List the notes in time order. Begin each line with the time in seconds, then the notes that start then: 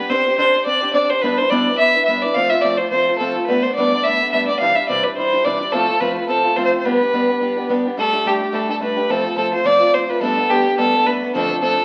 Already playing: B4
0.09 C4 D4 G4 C5
0.26 D4 G4 C5
0.38 C4 D4 G4 C5
0.54 D4 G4 C5
0.66 C4 D4 G4 C5 D5
0.81 D4 G4 C5
0.93 C4 D4 G4 C5 D5
1.10 D4 G4 C5
1.21 G3 B3 D4 E4 B4
1.38 D4 E4 B4 C5
1.50 G3 B3 D4 E4 B4 D5
1.67 D4 E4 B4
1.78 B3 D4 E4 B4 E5
1.95 D4 E4 B4
2.05 G3 B3 D4 E5
2.09 E4 B4
2.22 D4 E4 B4 D5
2.34 F3 A3 C4 F4 F5
2.50 A3 F4 E5
2.54 C4
2.61 F3 A3 C4 F4 D5
2.77 A3 C4 F4 C5
2.90 F3 A3 C4 F4 C5
3.08 A3 C4 F4
3.19 F3 A3 C4 F4 A4
3.36 A3 C4 F4
3.47 G3 A3 B3 D4 B4
3.63 B3 D4 C5
3.67 A3
3.74 G3 A3 D5
3.79 B3 D4
3.93 A3 B3 D4
4.04 G3 A3 B3 D4 E5
4.20 A3 B3 D4
4.32 G3 A3 B3 D4 E5
4.47 A3 B3 D4 D5
4.59 C3 E3 G3 D4 E4 F5
4.75 G3 D4 E4 E5
4.89 C3 E3 G3 D4 E4 D5
5.03 G3 D4 E4 B4
5.17 E3 G3 D4 E4 C5
5.32 G3 D4 E4
5.44 C3 E3 G3 D4 E4 D5
5.60 G3 D4 E4
5.72 F3 A3 C4 F4 A4
5.88 A3 C4 F4
6.00 F3 A3 C4 F4 B4
6.16 A3 C4 F4
6.28 F3 A3 C4 F4 A4
6.44 A3 C4 F4
6.56 F3 A3 C4 F4 C5
6.65 C5
6.73 A3 C4 F4
6.79 C5
6.84 G3 B3 D4 G4 B4
7.01 B3 D4 G4
7.13 G3 B3 D4 G4
7.29 B3 D4 G4
7.41 G3 B3 D4 G4
7.56 B3 D4 G4
7.69 G3 B3 D4 G4
7.85 B3 D4 G4
7.97 G3 A3 D4 G4 A4
8.13 A3 D4 G4
8.25 G3 A3 D4 G4
8.40 A3 D4 G4
8.52 G3 A3 D4 G4 A4
8.68 A3 D4 G4 A4
8.80 G3 A3 D4 G4 B4
8.96 A3 D4 G4
9.09 F3 A3 C4 F4 A4
9.24 A3 C4 F4
9.36 F3 A3 C4 F4 A4
9.52 A3 C4 F4 C5
9.64 F3 A3 C4 F4 D5
9.80 A3 C4 F4
9.93 F3 A3 C4 F4 C5
10.08 A3 C4 F4 B4
10.21 G3 A3 B3 D4 A4
10.37 A3 B3 D4
10.49 G3 A3 B3 D4 G4
10.65 A3 B3 D4
10.78 G3 A3 B3 D4 A4
10.93 A3 B3 D4
11.05 G3 A3 B3 D4 B4
11.22 A3 B3 D4
11.34 F2 D3 F3 A3 C4 D4 A4
11.49 F3 A3 C4 D4
11.61 F3 A3 C4 D4 A4
11.77 F3 A3 C4 D4